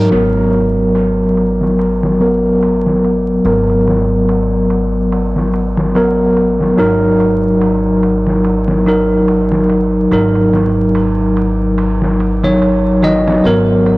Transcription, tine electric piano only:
0.00 0.11 F#3 medium
0.00 0.14 D#4 medium
0.00 0.13 A#4 loud
0.11 2.15 F#3 medium
0.11 2.16 B3 medium
0.11 2.17 A#4 medium
2.20 3.41 F#3 medium
2.20 3.41 B3 medium
2.20 3.42 A#4 medium
3.45 5.91 F#3 medium
3.45 5.91 B3 medium
3.45 5.92 A#4 medium
5.95 6.74 F#3 medium
5.95 6.75 B3 medium
5.95 6.75 A#4 medium
6.77 8.82 F#3 medium
6.77 8.83 D#4 medium
6.77 8.83 A#4 medium
8.86 10.07 F#3 medium
8.86 10.08 D#4 medium
8.86 10.08 A#4 medium
10.11 12.39 F#3 medium
10.11 12.39 D#4 medium
10.11 12.40 A#4 medium
12.43 12.99 F#3 medium
12.43 12.99 D#4 medium
12.43 12.99 C#5 medium
13.03 13.40 F#3 medium
13.03 13.41 D#4 medium
13.03 13.41 D#5 medium
13.44 13.98 F#3 medium
13.44 13.98 B3 medium
13.44 13.98 A#4 medium

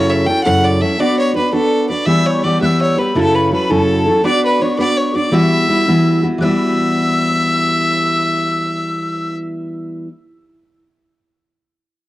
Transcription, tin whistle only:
2.08 2.26 E6 medium
2.26 2.32 E6 medium
2.31 2.47 C#6 medium
2.45 2.61 D6 medium
2.62 2.96 E6 loud
2.62 2.67 F#6 medium
2.98 3.16 B5 medium
3.16 3.21 B5 medium
3.20 3.37 A5 medium
3.36 3.53 B5 medium
3.54 3.72 B5 medium
3.71 4.27 A5 medium
4.25 4.46 D6 medium
4.44 4.64 B5 medium
4.62 4.80 C#6 medium
4.79 5.00 D6 medium
4.99 5.17 C#6 medium
5.16 5.32 D6 medium
5.32 6.20 E6 medium
6.41 9.34 E6 loud
6.41 6.46 F#6 loud

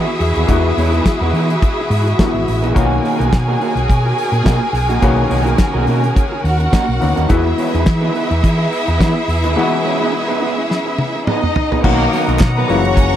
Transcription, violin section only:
0.00 2.72 E4 medium
0.00 2.72 E5 medium
2.76 6.41 G#4 medium
2.76 6.41 G#5 medium
6.45 7.28 F#4 medium
6.45 7.28 F#5 medium
7.29 11.23 E4 medium
7.29 11.23 E5 loud
11.26 11.82 D#4 medium
11.26 11.82 D#5 medium
11.84 12.37 A#3 loud
11.84 12.37 A#4 loud
12.56 12.66 B3 medium
12.56 12.66 B4 medium
12.86 13.16 C#4 medium
12.86 13.16 C#5 medium

